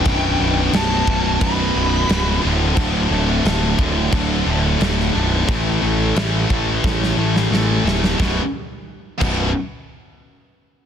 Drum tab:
CC |x---x---x---x---|x---x---x---x---|x---x-----------|------x---------|
SD |----o-------o---|----o-------oo--|----o---oo-oo-oo|o---------------|
BD |o-----o-o-------|o-----o-o-------|o-----o-o-------|o-----o---------|